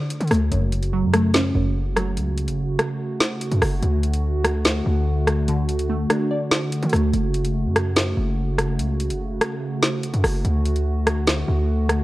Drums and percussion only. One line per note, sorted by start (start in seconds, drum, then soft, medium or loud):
0.10 closed hi-hat medium
0.21 closed hi-hat soft
0.28 cross-stick medium
0.28 closed hi-hat medium
0.28 open hi-hat medium
0.34 closed hi-hat soft
0.52 closed hi-hat medium
0.72 closed hi-hat medium
0.83 closed hi-hat medium
1.14 cross-stick loud
1.14 closed hi-hat medium
1.34 snare loud
1.34 closed hi-hat medium
1.96 cross-stick medium
1.96 closed hi-hat medium
2.17 closed hi-hat medium
2.38 closed hi-hat medium
2.48 closed hi-hat medium
2.79 cross-stick loud
2.79 closed hi-hat medium
3.20 snare loud
3.20 closed hi-hat medium
3.41 closed hi-hat medium
3.52 closed hi-hat medium
3.62 cross-stick loud
3.62 open hi-hat medium
3.83 closed hi-hat medium
4.03 closed hi-hat medium
4.14 closed hi-hat medium
4.45 cross-stick loud
4.45 closed hi-hat medium
4.65 snare loud
4.65 closed hi-hat medium
5.27 cross-stick loud
5.27 closed hi-hat medium
5.48 closed hi-hat medium
5.69 closed hi-hat medium
5.79 closed hi-hat medium
6.10 cross-stick loud
6.10 closed hi-hat medium
6.51 snare loud
6.51 closed hi-hat medium
6.72 closed hi-hat medium
6.83 closed hi-hat soft
6.89 cross-stick medium
6.89 closed hi-hat medium
6.89 open hi-hat medium
6.96 closed hi-hat soft
7.14 closed hi-hat medium
7.34 closed hi-hat medium
7.45 closed hi-hat medium
7.76 cross-stick loud
7.76 closed hi-hat medium
7.96 snare loud
7.96 closed hi-hat medium
8.58 cross-stick medium
8.58 closed hi-hat medium
8.79 closed hi-hat medium
9.00 closed hi-hat medium
9.10 closed hi-hat medium
9.41 cross-stick loud
9.41 closed hi-hat medium
9.82 snare loud
9.82 closed hi-hat medium
10.03 closed hi-hat medium
10.14 closed hi-hat medium
10.24 cross-stick medium
10.24 open hi-hat medium
10.45 closed hi-hat medium
10.65 closed hi-hat medium
10.76 closed hi-hat medium
11.07 cross-stick loud
11.07 closed hi-hat medium
11.27 snare loud
11.27 closed hi-hat medium
11.89 cross-stick medium
11.89 closed hi-hat medium